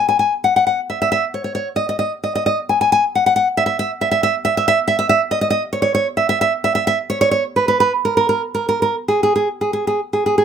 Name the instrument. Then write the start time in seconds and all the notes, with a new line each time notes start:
nylon-string guitar
0.09 G#5
0.19 G#5
0.44 F#5
0.56 F#5
0.67 F#5
0.90 E5
1.02 E5
1.12 E5
1.34 C#5
1.44 C#5
1.55 C#5
1.76 D#5
1.89 D#5
1.99 D#5
2.24 D#5
2.35 D#5
2.46 D#5
2.69 G#5
2.81 G#5
2.92 G#5
3.15 F#5
3.26 F#5
3.36 F#5
3.57 E5
3.66 E5
3.79 E5
4.01 E5
4.11 E5
4.23 E5
4.45 E5
4.57 E5
4.68 E5
4.88 E5
4.99 E5
5.09 E5
5.31 D#5
5.41 D#5
5.50 D#5
5.73 C#5
5.82 C#5
5.95 C#5
6.17 E5
6.29 E5
6.41 E5
6.64 E5
6.75 E5
6.87 E5
7.10 C#5
7.21 C#5
7.31 C#5
7.56 B4
7.68 B4
7.80 B4
8.05 A#4
8.17 A#4
8.29 A#4
8.55 A#4
8.69 A#4
8.82 A#4
9.08 G#4
9.23 G#4
9.36 G#4
9.61 G#4
9.73 G#4
9.87 G#4
10.13 G#4
10.26 G#4
10.38 G#4